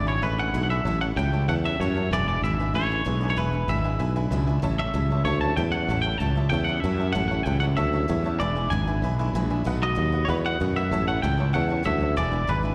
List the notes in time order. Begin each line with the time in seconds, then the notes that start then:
Already playing: G#1
0.06 E3 G#3 D4 E4 C#5 E5 G#5 B5
0.22 A1 E3 G#3 D4 E4 B4 E5 G#5 B5
0.38 E3 G#3 D4 E4 E5 F#5 G#5 B5
0.54 B1 E2 B2 E3 G#3 D4 E4 E5 G#5 B5
0.63 F#5
0.69 E3 G#3 D4 E4 E5 G#5 B5
0.85 A1 A2 E3 G3 C#4 E4 C#5 E5 A5
1.01 C#4 E4 C#5 E5 F#5 A5
1.05 G3
1.16 C#2 A2 E3 G3 C#4 E4 C#5 E5 G5 A5
1.33 G3 C#4 E4 C#5 E5 A5
1.48 E2 E3 G3 C#4 E4 C#5 E5 F#5 A5
1.64 G3 C#4 E4 C#5 E5 A5
1.80 F#2 A2 E3 G3 C#4 E4 C#5 E5 A5
1.95 G3 C#4 E4 C#5 E5 A5
2.11 E1 E2 B2 E3 G#3 D4 E4 B4 D5 E5 G#5
2.27 E3 G#3 D4 E4 B4 D5 E5 G#5
2.42 G#1 E2 B2 E3 G#3 D4 E4 B4 E5 G#5
2.60 E3 G#3 D4 E4 B4 E5 G#5
2.74 A1 E3 G#3 D4 E4 B4 C#5 E5 G#5
2.90 E3 G#3 D4 E4 B4 E5 G#5
3.05 B1 E2 B2 E3 G#3 D4 E4 B4 E5 G#5
3.21 E3 G#3 D4 E4 B4 E5 G#5
3.30 C#5
3.36 E1 E2 B2 E3 G#3 D4 E4 B4 E5 G#5
3.51 E3 G#3 D4 E4 B4 E5 G#5
3.68 G#1 E2 B2 E3 G#3 D4 E4 B4 E5 G#5
3.84 E3 G#3 D4 E4 B4 E5 G#5
3.99 B1 E3 G#3 D4 E4 B4 E5 G#5
4.16 E3 G#3 D4 E4 B4 E5 G#5
4.30 C#2 E2 B2 E3 G#3 D4 E4 B4 E5 G#5
4.46 E3 G#3 D4 E4 B4 E5 G#5
4.62 A1 A2 E3 G3 C#4 E4 C#5 E5 A5
4.78 G3 C#4 E4 C#5 E5 A5
4.94 C#2 A2 E3 G3 C#4 E4 C#5 E5 A5
5.10 G3 C#4 E4 C#5 E5 A5
5.25 D2 E3 G3 C#4 E4 C#5 E5 A5
5.41 G3 C#4 E4 C#5 E5 A5
5.57 E2 A2 E3 G3 C#4 E4 C#5 E5 G5 A5
5.72 G3 C#4 E4 C#5 E5 F#5 A5
5.88 A1 A2 E3 G3 C#4 E4 C#5 E5 A5
6.02 E4 C#5 G5
6.06 G3 C#4 E5 A5
6.18 C#2 A2 E3 G3 C#4 C#5 E5 A5
6.22 E4
6.35 G3 C#4 E4 C#5 E5 A5
6.50 E2 E3 G3 C#5 E5 G5 A5
6.54 C#4 E4
6.64 C#4 E4 F#5
6.68 G3 C#5 E5 A5
6.80 F#2 A2 E3 E5
6.84 G3 C#4 E4 C#5 E5 A5
6.99 G3 C#4 E4 C#5 E5 A5
7.13 A1 A2 E3 G3 C#4 E4 C#5 E5 F#5 A5
7.28 E4 C#5 E5 F#5 A5
7.32 G3 C#4
7.43 C#2 A2 E3 G3 C#4 E4 C#5 E5 G5 A5
7.60 C#4 E4 C#5 E5 F#5 A5
7.64 G3
7.76 D2 E3 G3 C#4 E4 C#5 E5 A5
7.93 G3 C#4 E4 C#5 E5 A5
8.08 E2 A2 E3 G3 C#4 E4 C#5 E5 A5
8.24 G3 C#4 E4 C#5 E5 A5
8.40 E1 E2 B2 E3 G#3 D4 E4 B4 D5 E5 G#5
8.55 E3 G#3 D4 E4 B4 E5 G#5
8.70 G#1 E2 B2 E3 G#3 D4 E4 B4 E5 G#5
8.87 E3 G#3 D4 E4 B4 E5 G#5
9.02 B1 E3 G#3 D4 E4 B4 E5 G#5
9.19 E3 G#3 D4 E4 B4 E5 G#5
9.33 A#1 E2 B2 E3 G#3 D4 E4 B4 E5 G#5
9.50 E3 G#3 D4 E4 B4 E5 G#5
9.64 B1 B2 D#3 A3 B3 F#4 B4 D#5 F#5
9.80 A3 B3 F#4 B4 D#5 F#5
9.95 D#2 B2 D#3 A3 B3 F#4 B4 D#5 F#5
10.12 A3 B3 F#4 B4 D#5 F#5
10.25 E2 D#3 B4 C#5 D#5 F#5
10.29 A3 B3 F#4 B4
10.45 A3 B3 F#4 B4 D#5 F#5
10.60 F#2 B2 D#3 A3 B3 F#4 B4 D#5 F#5
10.76 A3 B3 F#4 B4 D#5 E5 F#5
10.91 A1 A2 E3 G3 C#4 E4 C#5 E5 A5
11.07 G3 C#4 E4 C#5 E5 F#5 A5
11.22 C#2 A2 E3 G3 C#4 E4 C#5 E5 G5 A5
11.38 G3 C#4 E4 C#5 E5 A5
11.53 E2 E3 G3 C#4 E4 C#5 E5 F#5 A5
11.68 G3 C#4 E4 C#5 E5 A5
11.83 D2 A2 E3 G3 C#4 E4 C#5 E5 A5
12.01 G3 C#4 E4 C#5 E5 A5
12.16 E1 E2 B2 E3 G#3 D4 E4 B4 D5 E5 G#5
12.31 E3 G#3 D4 E4 B4 E5 G#5
12.47 G#1 E2 B2 E3 G#3 D4 E4 B4 E5 G#5
12.63 E3 G#3 D4 E4 B4 E5 G#5